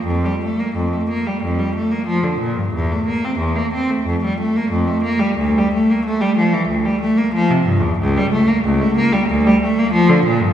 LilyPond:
\new Staff \with { instrumentName = "Cello" } { \clef bass \time 4/4 \key f \major \tempo 4 = 92 f,16 g16 a16 bes16 f,16 a16 bes16 g16 f,16 g16 a16 bes16 f16 d16 bes,16 g,16 | e,16 a16 bes16 c'16 e,16 bes16 c'16 a16 f,16 g16 a16 bes16 f,16 a16 bes16 g16 | d,16 g16 a16 bes16 a16 g16 f16 e16 d,16 g16 a16 bes16 f16 c16 g,16 e,16 | cis,16 g16 a16 bes16 cis,16 a16 bes16 g16 d,16 g16 a16 bes16 f16 d16 bes,16 g,16 | }